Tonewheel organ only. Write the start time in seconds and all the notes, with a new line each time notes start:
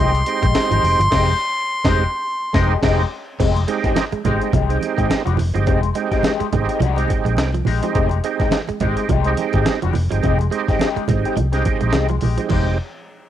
Already playing: G#3 C4 D#4 G4
0.27 G#3 C4 D#4 G4
0.54 G#3 C4 D#4 G4
1.11 G#3 C4 D#4 G4
1.84 G#3 C4 D#4 G4
2.53 G#3 C4 D#4 G4
2.81 G#3 C4 D#4 G4
3.67 G#3 C4 D#4 G4
4.24 G#3 C4 D#4 G4
4.69 G#3 C4 D#4 G4
5.54 G#3 C4 D#4 G4
5.95 G#3 C4 D#4 G4
6.52 G#3 C4 D#4 G4
6.96 G#3 C4 D#4 G4
7.82 G#3 C4 D#4 G4
8.24 G#3 C4 D#4 G4
8.81 G#3 C4 D#4 G4
9.25 G#3 C4 D#4 G4
10.10 G#3 C4 D#4 G4
10.51 G#3 C4 D#4 G4
11.08 G#3 C4 D#4 G4
11.52 G#3 C4 D#4 G4
12.38 G#3 C4 D#4 G4
12.51 G#3 C4 D#4 G4